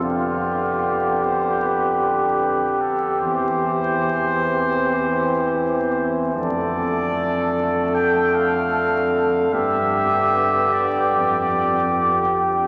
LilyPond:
<<
  \new Staff \with { instrumentName = "Trumpet" } { \time 4/4 \key g \mixolydian \tempo 4 = 76 f'4. c''8 b'4. a'8 | c''2.~ c''8 r8 | d''2 g''8 f''4. | e''4. d''8 d''4. r8 | }
  \new Staff \with { instrumentName = "Flugelhorn" } { \time 4/4 \key g \mixolydian g'1~ | g'2.~ g'8 r8 | a'1 | g'1 | }
  \new Staff \with { instrumentName = "French horn" } { \time 4/4 \key g \mixolydian b2.~ b8 r8 | c'1 | a1 | b2.~ b8 r8 | }
  \new Staff \with { instrumentName = "Trombone" } { \clef bass \time 4/4 \key g \mixolydian d2.~ d8 r8 | e1 | d1~ | d2.~ d8 r8 | }
  \new Staff \with { instrumentName = "Tuba" } { \clef bass \time 4/4 \key g \mixolydian f,2.~ f,8 r8 | e,1 | f,1 | g,4. r8 f,2 | }
>>